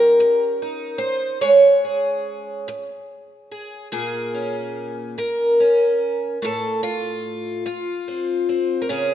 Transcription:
Already playing: G3 C#4 G4 A#4
0.20 muted twelve-string acoustic guitar stroke
0.62 D#4
0.98 C5
1.41 G#3 C#5
1.85 G#4
2.68 muted twelve-string acoustic guitar stroke
3.52 G#4
3.92 A#2 G#4
4.34 C#4
5.18 A#4, muted twelve-string acoustic guitar stroke
5.60 C#4
6.42 A2 A4
6.83 F4
7.66 F4, muted twelve-string acoustic guitar stroke
8.08 C4
8.49 C4
8.82 A#4
8.89 C#3 G#4

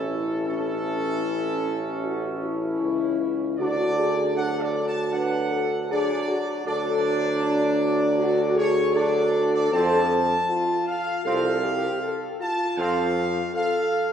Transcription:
Already playing: A1 E3 C#4 E4 A4
0.46 E3 C#4 A4
2.04 F#4
2.43 E4
2.81 C#2
3.59 D2 F#3 D4 F#4 D5
3.98 G#4
4.35 F#3 D4 A4 F#5
4.61 D5
4.87 A5
5.11 F#3 D4 F#5
5.15 B4
5.50 A4
5.88 F#3 D4 G#4 D5
6.28 F#4
6.64 D2 F#3 D4 A4 D5
7.43 D4
8.17 F#4
8.54 G#4 C#5
8.94 F#3 D4 A4 D5
9.54 D5
9.72 F2 F3 C4 A5
10.48 F4
10.87 F5
11.24 C2 F3 C4 A4 F5
11.63 G4
12.02 A4
12.39 F4 A5
12.78 F2 F3 C4 F5
13.53 A4 F5

